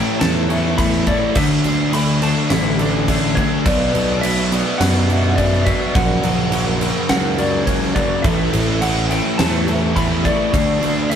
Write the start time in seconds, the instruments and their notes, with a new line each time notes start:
Already playing: distorted electric guitar A2 E3 A3, clean electric guitar A2 A3 E4, string section A3 C#4 E4 C#5, vibraphone C#5, electric slide guitar G5
0.19 picked electric bass E2, distorted electric guitar A2 E3 A3, clean electric guitar A4, electric slide guitar A5, snare, crash
0.49 distorted electric guitar A2 E3 A3, clean electric guitar C#4, vibraphone E5, crash
0.78 distorted electric guitar A2 E3 A3, clean electric guitar A3, electric slide guitar B5, kick, crash
0.92 snare
1.07 distorted electric guitar A2 E3 A3, clean electric guitar E4, vibraphone C#5, electric slide guitar D5, kick, crash
1.35 picked electric bass D2, distorted electric guitar D3 A3 D4, clean electric guitar D3, string section F#3 D4 A4, electric slide guitar E5, kick, crash
1.64 picked electric bass D2, distorted electric guitar D3 A3 D4, crash
1.92 distorted electric guitar D3 A3 D4, clean electric guitar A3, vibraphone A4, electric slide guitar B5, crash
2.22 distorted electric guitar D3 A3 D4, clean electric guitar F#4, electric slide guitar A5, crash
2.50 picked electric bass A1, distorted electric guitar D3 A3 D4, clean electric guitar E4, vibraphone A4, electric slide guitar E5, snare, crash
2.79 distorted electric guitar D3 A3 D4, clean electric guitar D4, crash
3.07 distorted electric guitar D3 A3 D4, clean electric guitar A3, vibraphone C#5, kick, crash
3.35 distorted electric guitar D3 A3 D4, clean electric guitar F#4, electric slide guitar C#5, kick, crash
3.65 picked electric bass B1, distorted electric guitar B2 F#3 B3, clean electric guitar B2, string section B3 D4, vibraphone B4, electric slide guitar D5, kick, crash
3.94 picked electric bass B1, distorted electric guitar B2 F#3 B3, crash
4.21 distorted electric guitar B2 F#3 B3, clean electric guitar A3, electric slide guitar E5, crash
4.51 distorted electric guitar B2 F#3 B3, clean electric guitar F#4, vibraphone D5, crash
4.78 picked electric bass F#2, distorted electric guitar B2 F#3 B3, clean electric guitar B4, electric slide guitar F#5, snare, crash
5.09 distorted electric guitar B2 F#3 B3, clean electric guitar D4, vibraphone E5, crash
5.36 distorted electric guitar B2 F#3 B3, clean electric guitar A3, electric slide guitar D5, kick, crash
5.53 snare
5.65 distorted electric guitar B2 F#3 B3, clean electric guitar F#4, vibraphone D5, electric slide guitar E5, kick, crash
5.94 picked electric bass A#1, distorted electric guitar F#2 C#3 F#3, clean electric guitar A#3, string section A#3 C#4 A#4, electric slide guitar F#5, kick, crash
6.23 picked electric bass A#1, distorted electric guitar F#2 C#3 F#3, crash
6.52 distorted electric guitar F#2 C#3 F#3, clean electric guitar A#3, vibraphone A#4, crash
6.81 distorted electric guitar F#2 C#3 F#3, clean electric guitar F#4, crash
7.09 picked electric bass C#2, distorted electric guitar F#2 C#3 F#3, clean electric guitar A#4, vibraphone A#4, electric slide guitar F#5, snare, crash
7.38 distorted electric guitar F#2 C#3 F#3, clean electric guitar C#4, electric slide guitar D5, crash
7.66 distorted electric guitar F#2 C#3 F#3, clean electric guitar A#3, electric slide guitar C#5, vibraphone C#5, kick, crash
7.81 snare
7.95 distorted electric guitar F#2 C#3 F#3, clean electric guitar F#4, electric slide guitar D5, kick, crash
8.22 picked electric bass A1, distorted electric guitar A2 E3 A3, clean electric guitar A2, string section E3 A3 A4, vibraphone A4, electric slide guitar E5, kick, crash
8.52 picked electric bass A1, distorted electric guitar A2 E3 A3, crash
8.81 distorted electric guitar A2 E3 A3, clean electric guitar A3, electric slide guitar F#5, crash
9.09 distorted electric guitar A2 E3 A3, clean electric guitar E4, vibraphone C#5, electric slide guitar G5, crash
9.38 picked electric bass E2, distorted electric guitar A2 E3 A3, clean electric guitar A4, electric slide guitar A5, snare, crash
9.67 distorted electric guitar A2 E3 A3, clean electric guitar C#4, vibraphone E5, crash
9.95 distorted electric guitar A2 E3 A3, clean electric guitar A3, electric slide guitar B5, kick, crash
10.24 distorted electric guitar A2 E3 A3, clean electric guitar E4, electric slide guitar D5, vibraphone C#6, kick, crash
10.53 picked electric bass D2, distorted electric guitar D3 A3 D4, clean electric guitar D3, string section E3 D4 F#4, kick, crash
10.81 picked electric bass D2, distorted electric guitar D3 A3 D4, crash
11.10 distorted electric guitar D3 A3 D4, clean electric guitar A3, vibraphone A4, electric slide guitar E5, crash